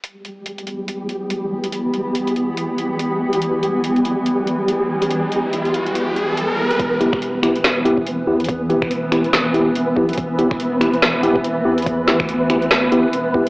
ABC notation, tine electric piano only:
X:1
M:4/4
L:1/16
Q:"Swing 16ths" 1/4=142
K:Em
V:1 name="Tine electric piano"
z16 | z16 | z16 | z16 |
z2 [B,EG]2 z2 [B,EG]2 z2 [B,EG] z3 [B,EG]2 | z2 [B,EG]2 z2 [B,EG]2 z2 [B,EG] z3 [B,EG]2 | z2 [B,EG]2 z2 [B,EG]2 z2 [B,EG] z3 [B,EG]2 | z2 [B,EG]2 z2 [B,EG]2 z2 [B,EG] z3 [B,EG]2 |]